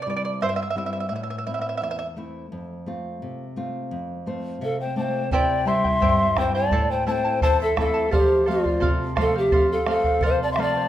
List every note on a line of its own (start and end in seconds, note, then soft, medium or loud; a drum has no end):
0.00 0.39 C3 medium
0.00 0.08 D5 medium
0.06 0.62 G3 soft
0.06 0.63 C4 soft
0.06 0.63 E4 soft
0.06 0.15 D5 medium
0.16 0.24 D5 medium
0.25 0.32 D5 medium
0.41 1.09 G2 medium
0.41 0.49 C5 medium
0.41 0.48 E5 medium
0.49 0.55 E5 medium
0.56 0.61 E5 medium
0.63 0.69 E5 medium
0.70 0.77 E5 medium
0.76 1.04 G3 soft
0.76 1.04 C4 soft
0.76 1.05 E4 soft
0.76 0.85 E5 medium
0.86 0.92 E5 medium
0.93 0.99 E5 medium
1.00 1.08 E5 medium
1.09 1.79 A2 medium
1.09 1.14 E5 soft
1.16 1.22 E5 medium
1.23 1.29 E5 soft
1.30 1.37 E5 medium
1.38 1.45 E5 medium
1.47 2.03 A3 soft
1.47 2.03 C4 soft
1.47 2.03 E4 soft
1.47 1.53 E5 medium
1.54 1.60 E5 medium
1.61 1.68 E5 medium
1.69 1.76 E5 medium
1.77 1.82 E5 medium
1.82 2.50 E2 medium
1.82 1.90 E5 medium
1.91 1.98 E5 medium
1.99 2.06 E5 medium
2.16 2.45 A3 soft
2.16 2.45 C4 soft
2.16 2.46 E4 soft
2.52 3.20 F2 medium
2.86 3.43 A3 soft
2.86 3.43 C4 soft
2.86 3.44 F4 soft
3.22 3.90 C3 medium
3.56 4.13 A3 soft
3.56 4.13 C4 soft
3.56 4.13 F4 soft
3.91 4.60 F2 medium
4.26 4.83 A3 soft
4.26 4.83 C4 soft
4.26 4.83 F4 soft
4.26 4.60 C5 medium
4.61 5.30 C3 medium
4.61 4.80 A4 medium
4.61 4.95 E5 medium
4.61 4.79 F5 medium
4.80 4.97 C5 medium
4.80 4.97 G5 medium
4.96 5.25 A3 soft
4.96 5.25 C4 soft
4.96 5.25 F4 soft
4.96 5.30 C5 medium
4.96 5.30 D5 medium
4.96 5.03 A5 soft
5.02 5.30 G5 medium
5.31 6.00 C3 medium
5.31 5.66 E4 medium
5.31 5.68 G4 medium
5.31 5.66 C5 medium
5.31 5.68 D5 medium
5.31 5.66 E5 medium
5.31 5.69 G5 medium
5.31 5.67 G5 medium
5.31 bombo low medium
5.65 6.22 G3 soft
5.65 6.23 C4 soft
5.65 6.23 E4 soft
5.65 5.84 E4 medium
5.65 5.84 C5 medium
5.65 6.41 E5 medium
5.65 5.85 E5 medium
5.65 5.83 G5 medium
5.65 6.39 C6 medium
5.84 6.01 E4 soft
5.84 6.01 C5 soft
5.84 6.01 G5 soft
5.84 bombo low soft
6.00 6.69 G2 medium
6.00 6.37 E4 medium
6.00 6.37 G4 medium
6.00 6.38 C5 medium
6.00 6.37 E5 medium
6.00 6.38 G5 medium
6.00 bombo low medium
6.36 6.65 G3 soft
6.36 6.65 C4 soft
6.36 6.65 E4 medium
6.36 6.55 E4 medium
6.36 6.54 C5 medium
6.36 6.55 E5 medium
6.36 6.55 G5 medium
6.36 6.53 G5 medium
6.36 bombo rim medium
6.36 bombo low soft
6.55 6.72 E4 soft
6.55 6.71 C5 soft
6.55 6.92 D5 medium
6.55 6.72 G5 medium
6.55 6.92 A5 medium
6.71 7.40 A2 medium
6.71 7.06 E4 medium
6.71 7.06 A4 medium
6.71 7.07 C5 medium
6.71 7.05 E5 medium
6.71 7.07 A5 medium
6.71 bombo low medium
6.91 7.06 C5 medium
6.91 7.08 G5 medium
7.06 7.63 A3 soft
7.06 7.63 C4 soft
7.06 7.25 E4 medium
7.06 7.63 E4 soft
7.06 7.24 A4 medium
7.06 7.40 C5 medium
7.06 7.25 E5 medium
7.06 7.23 A5 medium
7.06 7.13 A5 medium
7.12 7.40 G5 medium
7.25 7.42 E4 soft
7.25 7.42 A4 soft
7.25 7.42 A5 medium
7.42 8.10 E2 medium
7.42 7.76 E4 medium
7.42 7.76 A4 medium
7.42 7.77 C5 medium
7.42 7.59 C5 medium
7.42 7.75 E5 medium
7.42 7.77 A5 medium
7.42 7.59 A5 medium
7.42 bombo low medium
7.61 7.78 A4 medium
7.61 7.77 E5 medium
7.76 8.05 A3 soft
7.76 8.05 C4 soft
7.76 7.94 E4 medium
7.76 8.05 E4 medium
7.76 7.94 A4 medium
7.76 8.14 A4 medium
7.76 7.94 E5 medium
7.76 7.85 F5 medium
7.76 7.93 A5 medium
7.76 bombo rim medium
7.76 bombo low medium
7.84 8.16 E5 medium
7.94 8.13 E4 soft
7.94 8.10 A4 soft
7.94 8.12 A5 medium
8.11 8.80 F2 medium
8.11 8.47 G4 medium
8.11 8.45 A4 medium
8.11 8.46 C5 medium
8.11 8.20 D5 medium
8.11 8.46 F5 medium
8.11 bombo low medium
8.19 8.48 C5 medium
8.46 9.04 F3 soft
8.46 9.04 A3 soft
8.46 9.04 C4 medium
8.46 8.64 A4 medium
8.46 8.63 C5 medium
8.46 8.89 D5 medium
8.46 8.63 F5 medium
8.50 8.89 F4 medium
8.64 8.80 C5 soft
8.64 8.80 F5 soft
8.64 bombo low medium
8.80 9.50 C3 medium
8.80 9.14 A4 medium
8.80 9.15 C5 medium
8.80 9.16 F5 medium
8.80 bombo low medium
9.16 9.73 F3 soft
9.16 9.73 A3 soft
9.16 9.73 C4 medium
9.16 9.34 A4 medium
9.16 9.34 C5 medium
9.16 9.34 F5 medium
9.16 bombo rim medium
9.16 bombo low medium
9.20 9.36 A4 medium
9.20 9.35 F5 medium
9.35 9.69 G4 medium
9.35 9.51 C5 soft
9.35 9.52 F5 soft
9.35 9.42 F5 medium
9.41 9.68 E5 medium
9.52 10.20 F2 medium
9.52 9.86 A4 medium
9.52 9.86 C5 medium
9.52 9.87 F5 medium
9.52 bombo low medium
9.72 9.87 A4 medium
9.72 9.87 F5 medium
9.86 10.42 F3 soft
9.86 10.43 A3 soft
9.86 10.43 C4 soft
9.86 10.04 A4 medium
9.86 10.27 A4 medium
9.86 10.05 C5 medium
9.86 10.04 F5 medium
9.86 bombo rim medium
9.91 10.26 F5 medium
10.04 10.22 C5 soft
10.04 10.22 F5 medium
10.04 bombo low medium
10.21 10.88 C3 medium
10.21 10.57 A4 medium
10.21 10.58 C5 medium
10.21 10.58 F5 medium
10.21 bombo low medium
10.25 10.41 C5 medium
10.25 10.41 F5 medium
10.43 10.51 D5 medium
10.43 10.50 A5 medium
10.51 10.63 E5 medium
10.51 10.62 C6 medium
10.56 10.85 F3 soft
10.56 10.85 A3 soft
10.56 10.86 C4 medium
10.56 10.75 A4 medium
10.56 10.75 C5 medium
10.56 10.74 F5 medium
10.56 bombo rim medium
10.61 10.88 D5 medium
10.61 10.88 A5 medium
10.75 10.88 C5 soft
10.75 10.88 F5 soft